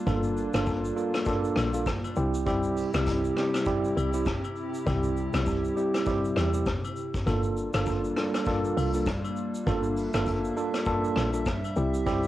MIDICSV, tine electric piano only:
0, 0, Header, 1, 2, 480
1, 0, Start_track
1, 0, Tempo, 600000
1, 54, Time_signature, 4, 2, 24, 8
1, 9819, End_track
2, 0, Start_track
2, 0, Title_t, "Tine electric piano"
2, 0, Program_c, 0, 4
2, 50, Note_on_c, 0, 58, 86
2, 51, Note_on_c, 0, 62, 87
2, 53, Note_on_c, 0, 65, 83
2, 54, Note_on_c, 0, 69, 99
2, 397, Note_off_c, 0, 58, 0
2, 398, Note_off_c, 0, 62, 0
2, 399, Note_off_c, 0, 65, 0
2, 400, Note_off_c, 0, 69, 0
2, 430, Note_on_c, 0, 58, 81
2, 433, Note_on_c, 0, 62, 75
2, 433, Note_on_c, 0, 65, 70
2, 434, Note_on_c, 0, 69, 88
2, 748, Note_off_c, 0, 58, 0
2, 749, Note_off_c, 0, 62, 0
2, 750, Note_off_c, 0, 65, 0
2, 750, Note_off_c, 0, 69, 0
2, 768, Note_on_c, 0, 58, 80
2, 769, Note_on_c, 0, 62, 71
2, 771, Note_on_c, 0, 65, 72
2, 773, Note_on_c, 0, 69, 85
2, 994, Note_off_c, 0, 58, 0
2, 995, Note_off_c, 0, 62, 0
2, 996, Note_off_c, 0, 65, 0
2, 997, Note_off_c, 0, 69, 0
2, 1009, Note_on_c, 0, 58, 92
2, 1011, Note_on_c, 0, 62, 88
2, 1012, Note_on_c, 0, 65, 86
2, 1014, Note_on_c, 0, 69, 103
2, 1357, Note_off_c, 0, 58, 0
2, 1358, Note_off_c, 0, 62, 0
2, 1359, Note_off_c, 0, 65, 0
2, 1359, Note_off_c, 0, 69, 0
2, 1388, Note_on_c, 0, 58, 77
2, 1389, Note_on_c, 0, 62, 68
2, 1392, Note_on_c, 0, 65, 73
2, 1394, Note_on_c, 0, 69, 85
2, 1491, Note_off_c, 0, 58, 0
2, 1492, Note_off_c, 0, 62, 0
2, 1493, Note_off_c, 0, 65, 0
2, 1494, Note_off_c, 0, 69, 0
2, 1731, Note_on_c, 0, 55, 91
2, 1732, Note_on_c, 0, 60, 89
2, 1735, Note_on_c, 0, 64, 89
2, 1737, Note_on_c, 0, 67, 106
2, 1956, Note_off_c, 0, 55, 0
2, 1957, Note_off_c, 0, 60, 0
2, 1958, Note_off_c, 0, 64, 0
2, 1959, Note_off_c, 0, 67, 0
2, 1969, Note_on_c, 0, 55, 92
2, 1970, Note_on_c, 0, 60, 79
2, 1973, Note_on_c, 0, 64, 81
2, 1973, Note_on_c, 0, 67, 103
2, 2317, Note_off_c, 0, 55, 0
2, 2318, Note_off_c, 0, 60, 0
2, 2319, Note_off_c, 0, 64, 0
2, 2319, Note_off_c, 0, 67, 0
2, 2350, Note_on_c, 0, 55, 79
2, 2353, Note_on_c, 0, 60, 72
2, 2353, Note_on_c, 0, 64, 73
2, 2355, Note_on_c, 0, 67, 89
2, 2668, Note_off_c, 0, 55, 0
2, 2669, Note_off_c, 0, 60, 0
2, 2669, Note_off_c, 0, 64, 0
2, 2670, Note_off_c, 0, 67, 0
2, 2693, Note_on_c, 0, 55, 76
2, 2694, Note_on_c, 0, 60, 73
2, 2696, Note_on_c, 0, 64, 69
2, 2697, Note_on_c, 0, 67, 90
2, 2917, Note_off_c, 0, 55, 0
2, 2918, Note_off_c, 0, 60, 0
2, 2918, Note_off_c, 0, 64, 0
2, 2919, Note_off_c, 0, 67, 0
2, 2930, Note_on_c, 0, 55, 96
2, 2932, Note_on_c, 0, 60, 88
2, 2934, Note_on_c, 0, 64, 87
2, 2937, Note_on_c, 0, 67, 103
2, 3277, Note_off_c, 0, 55, 0
2, 3278, Note_off_c, 0, 60, 0
2, 3279, Note_off_c, 0, 64, 0
2, 3281, Note_off_c, 0, 67, 0
2, 3308, Note_on_c, 0, 55, 77
2, 3311, Note_on_c, 0, 60, 74
2, 3312, Note_on_c, 0, 64, 74
2, 3314, Note_on_c, 0, 67, 86
2, 3412, Note_off_c, 0, 55, 0
2, 3413, Note_off_c, 0, 60, 0
2, 3413, Note_off_c, 0, 64, 0
2, 3415, Note_off_c, 0, 67, 0
2, 3889, Note_on_c, 0, 55, 94
2, 3890, Note_on_c, 0, 60, 82
2, 3891, Note_on_c, 0, 64, 82
2, 3894, Note_on_c, 0, 67, 101
2, 4237, Note_off_c, 0, 55, 0
2, 4237, Note_off_c, 0, 60, 0
2, 4238, Note_off_c, 0, 64, 0
2, 4240, Note_off_c, 0, 67, 0
2, 4271, Note_on_c, 0, 55, 80
2, 4271, Note_on_c, 0, 60, 73
2, 4273, Note_on_c, 0, 64, 72
2, 4275, Note_on_c, 0, 67, 85
2, 4588, Note_off_c, 0, 55, 0
2, 4588, Note_off_c, 0, 60, 0
2, 4590, Note_off_c, 0, 64, 0
2, 4590, Note_off_c, 0, 67, 0
2, 4610, Note_on_c, 0, 55, 77
2, 4612, Note_on_c, 0, 60, 70
2, 4614, Note_on_c, 0, 64, 72
2, 4614, Note_on_c, 0, 67, 88
2, 4836, Note_off_c, 0, 55, 0
2, 4837, Note_off_c, 0, 60, 0
2, 4837, Note_off_c, 0, 64, 0
2, 4838, Note_off_c, 0, 67, 0
2, 4850, Note_on_c, 0, 55, 97
2, 4853, Note_on_c, 0, 60, 87
2, 4853, Note_on_c, 0, 64, 87
2, 4856, Note_on_c, 0, 67, 102
2, 5198, Note_off_c, 0, 55, 0
2, 5199, Note_off_c, 0, 60, 0
2, 5199, Note_off_c, 0, 64, 0
2, 5200, Note_off_c, 0, 67, 0
2, 5229, Note_on_c, 0, 55, 75
2, 5232, Note_on_c, 0, 60, 72
2, 5233, Note_on_c, 0, 64, 70
2, 5235, Note_on_c, 0, 67, 83
2, 5332, Note_off_c, 0, 55, 0
2, 5333, Note_off_c, 0, 60, 0
2, 5334, Note_off_c, 0, 64, 0
2, 5335, Note_off_c, 0, 67, 0
2, 5810, Note_on_c, 0, 58, 92
2, 5812, Note_on_c, 0, 62, 82
2, 5814, Note_on_c, 0, 65, 85
2, 5814, Note_on_c, 0, 69, 97
2, 6157, Note_off_c, 0, 58, 0
2, 6158, Note_off_c, 0, 62, 0
2, 6159, Note_off_c, 0, 65, 0
2, 6160, Note_off_c, 0, 69, 0
2, 6191, Note_on_c, 0, 58, 80
2, 6193, Note_on_c, 0, 62, 75
2, 6194, Note_on_c, 0, 65, 72
2, 6195, Note_on_c, 0, 69, 89
2, 6508, Note_off_c, 0, 58, 0
2, 6509, Note_off_c, 0, 62, 0
2, 6510, Note_off_c, 0, 65, 0
2, 6510, Note_off_c, 0, 69, 0
2, 6531, Note_on_c, 0, 58, 74
2, 6533, Note_on_c, 0, 62, 71
2, 6535, Note_on_c, 0, 65, 70
2, 6537, Note_on_c, 0, 69, 85
2, 6756, Note_off_c, 0, 58, 0
2, 6757, Note_off_c, 0, 62, 0
2, 6758, Note_off_c, 0, 65, 0
2, 6759, Note_off_c, 0, 69, 0
2, 6772, Note_on_c, 0, 58, 96
2, 6775, Note_on_c, 0, 62, 89
2, 6776, Note_on_c, 0, 65, 85
2, 6777, Note_on_c, 0, 69, 102
2, 7118, Note_off_c, 0, 58, 0
2, 7120, Note_off_c, 0, 62, 0
2, 7120, Note_off_c, 0, 65, 0
2, 7121, Note_off_c, 0, 69, 0
2, 7152, Note_on_c, 0, 58, 78
2, 7153, Note_on_c, 0, 62, 68
2, 7154, Note_on_c, 0, 65, 71
2, 7157, Note_on_c, 0, 69, 83
2, 7253, Note_off_c, 0, 58, 0
2, 7254, Note_off_c, 0, 62, 0
2, 7255, Note_off_c, 0, 65, 0
2, 7256, Note_off_c, 0, 69, 0
2, 7730, Note_on_c, 0, 58, 87
2, 7734, Note_on_c, 0, 62, 88
2, 7734, Note_on_c, 0, 65, 86
2, 7737, Note_on_c, 0, 69, 102
2, 8078, Note_off_c, 0, 58, 0
2, 8079, Note_off_c, 0, 62, 0
2, 8080, Note_off_c, 0, 65, 0
2, 8081, Note_off_c, 0, 69, 0
2, 8113, Note_on_c, 0, 58, 82
2, 8114, Note_on_c, 0, 62, 73
2, 8116, Note_on_c, 0, 65, 74
2, 8118, Note_on_c, 0, 69, 93
2, 8429, Note_off_c, 0, 58, 0
2, 8430, Note_off_c, 0, 62, 0
2, 8431, Note_off_c, 0, 65, 0
2, 8432, Note_off_c, 0, 69, 0
2, 8452, Note_on_c, 0, 58, 78
2, 8453, Note_on_c, 0, 62, 73
2, 8455, Note_on_c, 0, 65, 72
2, 8456, Note_on_c, 0, 69, 86
2, 8676, Note_off_c, 0, 58, 0
2, 8677, Note_off_c, 0, 62, 0
2, 8678, Note_off_c, 0, 65, 0
2, 8679, Note_off_c, 0, 69, 0
2, 8691, Note_on_c, 0, 58, 95
2, 8692, Note_on_c, 0, 62, 89
2, 8694, Note_on_c, 0, 65, 89
2, 8695, Note_on_c, 0, 69, 108
2, 9038, Note_off_c, 0, 58, 0
2, 9039, Note_off_c, 0, 62, 0
2, 9039, Note_off_c, 0, 65, 0
2, 9040, Note_off_c, 0, 69, 0
2, 9069, Note_on_c, 0, 58, 75
2, 9070, Note_on_c, 0, 62, 74
2, 9071, Note_on_c, 0, 65, 71
2, 9073, Note_on_c, 0, 69, 82
2, 9172, Note_off_c, 0, 58, 0
2, 9172, Note_off_c, 0, 62, 0
2, 9173, Note_off_c, 0, 65, 0
2, 9174, Note_off_c, 0, 69, 0
2, 9409, Note_on_c, 0, 55, 95
2, 9410, Note_on_c, 0, 60, 85
2, 9412, Note_on_c, 0, 64, 84
2, 9414, Note_on_c, 0, 67, 105
2, 9635, Note_off_c, 0, 55, 0
2, 9636, Note_off_c, 0, 60, 0
2, 9637, Note_off_c, 0, 64, 0
2, 9637, Note_off_c, 0, 67, 0
2, 9649, Note_on_c, 0, 55, 94
2, 9650, Note_on_c, 0, 60, 84
2, 9652, Note_on_c, 0, 64, 84
2, 9654, Note_on_c, 0, 67, 103
2, 9819, Note_off_c, 0, 55, 0
2, 9819, Note_off_c, 0, 60, 0
2, 9819, Note_off_c, 0, 64, 0
2, 9819, Note_off_c, 0, 67, 0
2, 9819, End_track
0, 0, End_of_file